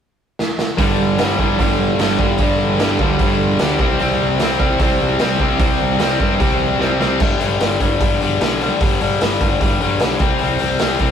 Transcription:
0.39 snare
0.59 snare
0.78 G1 G2 D3 G3, kick, open hi-hat
1.00 G1
1.18 G1 G2 D3 G3, snare, open hi-hat
1.38 G1 G2 D3 G3, kick
1.59 G1 G2 D3 G3, kick, open hi-hat
1.79 G1
1.99 G1 G2 D3 G3, snare, open hi-hat
2.19 G1 G2 D3 G3, kick
2.38 G1 G2 D3 G3, kick, open hi-hat
2.60 G1
2.79 G1 G2 D3 G3, snare, open hi-hat
2.99 D2 G2 D3 G3, kick
3.19 G1 G2 D3 G3, kick, open hi-hat
3.59 D2 G2 D3 G3, snare, open hi-hat
3.79 C2 C3 G3 C4, kick
3.99 C2 C3 G3 C4, open hi-hat
4.22 C2
4.39 C2 C3 G3 C4, snare, open hi-hat
4.58 C2 C3 G3 C4, kick
4.79 C2 C3 G3 C4, kick, open hi-hat
5.01 C2
5.19 C2 C3 G3 C4, snare, open hi-hat
5.40 C2 C3 G3 C4, kick
5.59 C2 C3 G3 C4, kick, open hi-hat
5.81 C2
5.99 C2 C3 G3 C4, snare, open hi-hat
6.20 G2 C3 G3 C4, kick
6.39 C2 C3 G3 C4, kick, open hi-hat
6.79 C2 C3 G3 C4, snare
6.99 C2 C3 G3 C4, snare
7.20 G1 G2 D3 G3, kick, crash
7.39 G1 G2 D3 G3, open hi-hat
7.59 G1 G2 D3 G3, snare, open hi-hat
7.80 G1 G2 D3 G3, kick, open hi-hat
7.99 G1 G2 D3 G3, kick, open hi-hat
8.20 G1 G2 D3 G3, open hi-hat
8.40 B1 G2 D3 G3, snare, open hi-hat
8.61 G2 D3 G3, open hi-hat
8.81 G1 G2 D3 G3, kick, open hi-hat
9.01 G1 G2 D3 G3, open hi-hat
9.21 G1 G2 D3 G3, snare, open hi-hat
9.41 G1 G2 D3 G3, kick, open hi-hat
9.60 G1 G2 D3 G3, kick, open hi-hat
9.80 G1 G2 D3 G3, open hi-hat
10.00 B1 G2 D3 G3, snare, open hi-hat
10.19 C2 C3 G3 C4, kick, open hi-hat
10.39 C2 C3 G3 C4, open hi-hat
10.59 C2 C3 G3 C4, open hi-hat
10.79 C2 C3 G3 C4, snare, open hi-hat
10.99 C2 C3 G3 C4, kick, open hi-hat

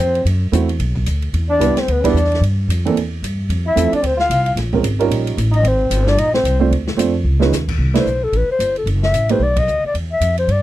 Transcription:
Already playing: C4 C5
0.00 F2
0.15 ride
0.25 F#2, ride
0.52 E2 A3 C4 E4 F#4 C5, hi-hat pedal, ride
0.69 ride
0.79 B1, ride
0.95 kick
1.06 D2, hi-hat pedal, ride
1.22 ride
1.33 E2, ride
1.50 D4 D5
1.59 C2 G3 B3 D4 E4 B4, hi-hat pedal, ride
1.76 C4, muted upright bass stroke, snare, ride
1.80 C5
1.88 D2 B3, ride
1.93 B4
2.03 G3 B3 D4 E4 B4 D5, kick, ride
2.14 E2, hi-hat pedal
2.25 snare
2.32 snare, ride
2.41 G2, ride
2.68 F2, hi-hat pedal, ride
2.85 E3 A#3 C4 D4 A4, ride
2.95 E2, ride
3.23 G2, hi-hat pedal, ride
3.49 F2, ride
3.67 E4 E5
3.75 E2 F3 A3 C4 E4 A4, hi-hat pedal, ride
3.92 D4 D5, muted upright bass stroke, ride
4.02 D2 C4, ride
4.07 C5
4.17 F4 F5, snare
4.29 C2, hi-hat pedal, ride
4.46 ride
4.55 A#1, snare, ride
4.73 G#3 C4 C#4 F4 A#4, kick
4.83 G#1, hi-hat pedal, ride
4.99 G3 C#4 D#4 F4 A#4, ride
5.09 A#1, ride
5.27 ride
5.37 A1, hi-hat pedal, ride
5.51 D#4 D#5, ride
5.63 G#1 C4, ride
5.68 C5
5.90 G1, hi-hat pedal, ride
6.07 D4 D5, snare
6.17 A#1 D#4 D#5, ride
6.34 C4 C5, snare
6.44 C2, hi-hat pedal, ride
6.60 A3 C4 D4 F4 C5
6.71 D2, ride
6.87 snare
6.97 F2 A3 C4 D4 F4 C5, hi-hat pedal, ride
7.24 C#2
7.39 G#3 C#4 D#4 F4 B4, snare
7.52 D#2, snare, hi-hat pedal
7.68 kick, crash
7.78 C2
7.94 A3 D4 E4 B4 C5, snare, ride
8.06 B1, hi-hat pedal
8.24 A4
8.32 A1, ride
8.37 B4
8.48 C5, muted upright bass stroke
8.59 G1, hi-hat pedal, ride
8.76 A4, ride
8.86 F#1, ride
9.03 E5, snare
9.12 A1, hi-hat pedal, ride
9.29 A3 D#4 G4 B4 C5, ride
9.39 B1 D5
9.56 D#5, kick, ride
9.67 D2, hi-hat pedal
9.83 D5, muted upright bass stroke
9.94 E2, ride
10.13 E5
10.20 F2, hi-hat pedal, ride
10.38 C5, ride
10.48 G2, ride
10.52 D5

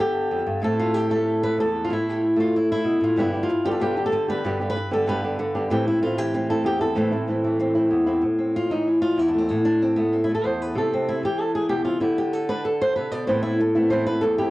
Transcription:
Already playing: G2 D3 B3 D4
0.00 G4
0.31 F2
0.46 G2
0.62 A2 A3 C4 A4
0.79 F4
0.94 G4
1.10 A3 A4
1.43 B4
1.58 E2 A4
1.85 F4
1.90 A2 E4
2.09 G4
2.36 A3
2.40 F4
2.56 E4
2.72 E4
2.84 B2
3.01 A2 F4
3.16 G2 B2 D3 G3 B3 E4 G4
3.33 D3 G3 B3 G4
3.43 F4
3.49 muted nylon-string guitar stroke
3.65 D3 G3 B3 G4
3.71 A4
3.80 G2 B2 D3 G3 B3 G4
3.97 D3 G3 B3 D4 G4
4.06 A4
4.12 D3, muted nylon-string guitar stroke
4.28 D3 G3 B3 G4 B4
4.44 G2 B2 D3 G3 B3 G4
4.60 D3 G3 B3 G4
4.70 B4
4.76 muted nylon-string guitar stroke
4.91 D3 G3 B3 G4 A4
5.06 G2 B2 D3 G3 B3 G4 B4
5.23 D3 G3 B3 D4 G4
5.39 D3, muted nylon-string guitar stroke
5.55 D3 G3 B3 D4 G4
5.70 A2 E3 A3 C4 E4 G4
5.86 A3 C4 E4
6.02 E3 A3 C4 E4 F4
6.18 E3 G4
6.34 C4, muted nylon-string guitar stroke
6.50 A3 C4 E4 A4
6.64 E2 G4
6.81 A3 C4 E4 A4
6.95 A2 E3 A3 C4 E4
7.12 A3 C4 E4
7.28 E3 A3 C4 E4
7.44 E3
7.59 C4, muted nylon-string guitar stroke
7.75 A3 C4 E4
7.91 E2
8.06 A3 C4 E4
8.22 A2
8.38 C4
8.56 F4
8.70 E3 D#4
8.87 E4
9.02 F4
9.18 E2 E4
9.28 D4
9.34 A3 C4
9.49 A2 B3
9.65 D4
9.82 C4
9.96 A3 B3
10.13 C4
10.24 E4
10.29 A3
10.35 A4
10.44 E2 C5
10.62 B4
10.75 C3 A4
10.93 C4
11.08 E4
11.23 E3 G4
11.40 A4
11.55 G#4
11.69 B2 G4
11.85 C3 F4
12.00 D3 E4
12.18 G4
12.33 A4
12.49 D4 B4
12.65 A4
12.82 C5
12.96 C3 B4
13.11 B2 D5
13.27 A2 E3 B3 C4 E4 C5
13.43 B3 C4 E4
13.60 A4, muted nylon-string guitar stroke
13.75 A3 B3 C4 E4
13.90 A2 E3 B3 C4 E4 C5
14.07 B3 C4 E4 B4
14.21 E2 A4, muted nylon-string guitar stroke
14.38 B3 C4 E4 G4

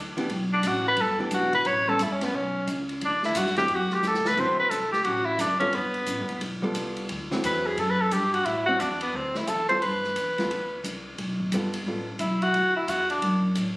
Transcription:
Already playing: D2
0.17 E3 B3 D4 G4, ride
0.29 B1, kick, ride
0.53 D4
0.63 A1, kick, hi-hat pedal, ride
0.67 F#4
0.88 B4
0.97 G1, kick, ride
1.01 A4
1.19 E3 B3 D4 G4
1.31 E1 F#4, kick, hi-hat pedal, ride
1.53 B4, kick, ride
1.65 A1 C#5, kick, ride
1.88 G3 B3 C#4 A4
1.99 G1 E4, kick, hi-hat pedal, ride
2.12 C#4
2.21 G3 B3 C#4, snare, ride
2.34 B1 C#4, kick
2.67 C#2, kick, hi-hat pedal, ride
2.89 ride
3.01 D2 D4, kick, ride
3.23 E4, snare
3.35 G2 F#4, kick, hi-hat pedal, ride
3.47 snare
3.56 D3 F#3 C4 E4 G4, snare, ride
3.68 F#2, kick, ride
3.75 F#4
3.90 G4, snare
4.03 E2, snare, hi-hat pedal
4.08 A4
4.14 snare
4.25 B4, snare
4.37 D2 D3 F#3 C4 E4 C5, kick, crash
4.59 B4
4.70 C2 A4, kick, hi-hat pedal, ride
4.92 G4, snare
5.04 A1 F#4, kick, ride
5.25 E4
5.38 F#1 D4, kick, snare, hi-hat pedal, ride
5.59 G3 B3 C#4 F4 A4, kick, ride
5.73 G1 B3, kick, ride
5.94 ride
6.06 A1, kick, hi-hat pedal, ride
6.19 G1
6.29 F1, ride
6.41 B1, kick, ride
6.62 G3 B3 F4 A4
6.75 C2, kick, hi-hat pedal, ride
6.97 ride
7.09 D2, kick, ride
7.31 D3 F#3 C4 E4, snare
7.43 E2 B4, kick, hi-hat pedal, ride
7.66 G#4
7.77 F#2 A4, kick, ride
7.90 B4
8.01 A4
8.11 G2 G4, kick, hi-hat pedal, ride
8.34 F#4, ride
8.45 A2 E4, kick, ride
8.66 G3 C4 F#4
8.70 E4
8.80 E2 D4, kick, hi-hat pedal, ride
9.01 B3, ride
9.13 D2 C4, kick
9.35 E4, snare
9.47 E2 A4, kick, hi-hat pedal, ride
9.69 G3 B3 F4 A4 C5, ride
9.82 G2 B4, kick, ride
10.04 snare
10.16 E2, kick, hi-hat pedal, ride
10.38 G3 B3 F4 A4, snare, ride
10.50 D2, kick, ride
10.84 C2, kick, hi-hat pedal, ride
11.18 B1, kick, ride
11.40 kick
11.52 G1 G3 B3 F4 A4, kick, hi-hat pedal, ride
11.74 ride
11.86 A1 G3 B3 F4 A4, kick
12.19 B1 E4, kick, hi-hat pedal, ride
12.42 F#4, ride
12.54 D2, kick, ride
12.76 E4
12.88 E2 F#4, kick, hi-hat pedal, ride
13.10 D4, ride
13.22 F#2, kick, ride
13.55 A2, kick, hi-hat pedal, ride

